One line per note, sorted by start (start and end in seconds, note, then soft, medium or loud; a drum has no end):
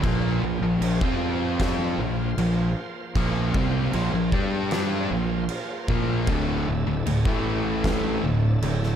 0.04 0.40 A#1 medium
0.04 0.42 A#2 loud
0.04 0.42 F3 loud
0.04 1.01 A#3 medium
0.04 0.42 A#3 loud
0.04 1.00 F4 medium
0.04 1.01 C5 medium
0.04 kick loud
0.04 crash medium
0.43 0.61 A#1 medium
0.43 0.62 A#2 medium
0.43 0.62 F3 medium
0.62 0.80 A#1 medium
0.62 0.81 A#2 medium
0.62 0.82 F3 medium
0.81 0.99 A#1 medium
0.81 1.01 A#2 medium
0.81 1.01 F3 medium
0.81 crash medium
1.01 1.94 F2 loud
1.01 1.98 F3 medium
1.01 1.98 C4 medium
1.01 1.99 C4 medium
1.01 1.98 F4 medium
1.01 1.99 G4 medium
1.01 kick loud
1.60 kick loud
1.60 snare loud
1.60 crash medium
1.98 2.34 A#1 medium
1.98 2.30 A#2 medium
1.98 2.30 F3 medium
1.98 4.30 A#3 medium
1.98 4.30 F4 medium
1.98 4.30 C5 medium
2.37 2.73 A#1 medium
2.37 2.69 A#2 medium
2.37 2.69 F3 medium
2.37 crash medium
3.15 3.52 A#1 loud
3.15 3.53 A#2 loud
3.15 3.53 F3 medium
3.15 3.53 A#3 loud
3.15 kick loud
3.15 crash medium
3.54 3.91 C2 medium
3.54 3.92 C3 medium
3.54 3.92 G3 medium
3.54 3.93 C4 loud
3.54 kick loud
3.93 4.12 A#1 loud
3.93 4.12 A#2 medium
3.93 4.12 F3 loud
3.93 crash medium
4.13 4.31 A#1 medium
4.13 4.33 A#2 medium
4.13 4.33 F3 medium
4.31 5.06 G2 medium
4.31 5.10 G3 medium
4.31 5.09 G3 medium
4.31 5.09 D4 medium
4.31 5.10 D4 medium
4.31 5.10 G4 loud
4.31 5.09 A4 medium
4.31 kick loud
4.71 snare loud
4.71 crash medium
5.11 5.47 A#1 medium
5.11 5.42 A#2 medium
5.11 5.42 F3 medium
5.11 6.28 A#3 medium
5.11 6.28 F4 medium
5.11 6.28 C5 medium
5.49 crash medium
5.88 6.25 A#1 loud
5.88 6.27 A#2 medium
5.88 6.28 F3 medium
5.88 6.28 A#3 loud
5.88 kick loud
6.27 6.64 D1 loud
6.27 6.66 D2 loud
6.27 6.66 A2 loud
6.27 6.66 D3 loud
6.27 7.26 D4 medium
6.27 8.96 A4 medium
6.27 7.25 E5 medium
6.27 kick loud
6.27 crash medium
6.68 6.86 D1 medium
6.68 6.85 D2 medium
6.68 6.86 A2 medium
6.86 7.05 D1 medium
6.86 7.05 D2 medium
6.86 7.06 A2 medium
7.06 7.24 D1 medium
7.06 7.25 D2 medium
7.06 7.25 A2 medium
7.06 crash medium
7.25 8.19 A1 loud
7.25 8.22 A2 medium
7.25 8.22 E3 medium
7.25 8.22 A3 medium
7.25 8.23 A3 medium
7.25 8.23 E4 medium
7.25 kick loud
7.84 kick loud
7.84 snare loud
7.84 crash medium
8.22 8.60 D1 medium
8.22 8.55 D2 medium
8.22 8.55 A2 medium
8.22 8.96 D4 medium
8.22 8.96 E5 medium
8.62 8.96 D1 medium
8.62 8.94 D2 medium
8.62 8.94 A2 medium
8.62 crash medium
8.83 snare soft